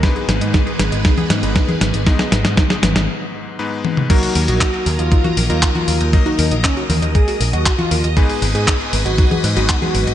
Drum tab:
CC |----------------|----------------|x---------------|----------------|
HH |xxxxxxxxxxxxxxxx|xxxxxxxx--------|xooxxxoxxxoxxxox|xxoxxxoxxooxxxox|
CP |----------------|----------------|----x-------x---|----x-------x---|
SD |o-o-o-o-o-o-o-o-|oooooooo--------|----------------|----------------|
T1 |----------------|--------------o-|----------------|----------------|
T2 |----------------|---------------o|----------------|----------------|
CG |---------o---o--|------o---------|---------o---o--|------o------o--|
BD |o---o---o---o---|o---o-----------|o---o---o---o---|o---o---o---o---|

CC |----------------|
HH |xooxxxoxxxoxxxox|
CP |----x-------x---|
SD |----------------|
T1 |----------------|
T2 |----------------|
CG |---------o---o--|
BD |o---o---o---o---|